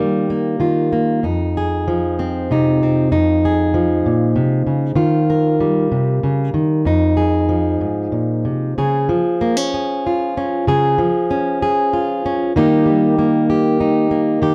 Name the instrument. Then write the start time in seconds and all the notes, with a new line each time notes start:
steel-string acoustic guitar
Already playing: D#3 G3 A#3 F4 A#4
0.30 A#3
0.60 D#3 F4
0.93 A#3
1.23 F2 D#4
1.57 G#4
1.88 F3
2.19 C4
2.51 C3 D#4
2.83 C4
3.12 F2 D#4
3.45 G#4
3.74 F3
4.06 A#2
4.36 C3
4.67 C#3
4.95 D#3 F4
5.30 A#4
5.60 G3
5.92 C3
6.23 C#3
6.54 D#3
6.85 F2 D#4
7.17 G#4
7.49 F3
7.81 G#2
8.12 A#2
8.45 C3
8.78 C#3 G#4
9.09 F3
9.41 A#3
9.57 C#4
9.74 G#4
10.07 F4
10.37 C#4
10.67 C#3 G#4
10.98 F3
11.31 C#4
11.62 G#4
11.93 F4
12.26 C#4
12.56 D#3 G3 A#3 D#4 G4
12.86 G3
13.19 A#3
13.50 G4
13.80 D#4
14.11 A#3
14.42 D#3 G4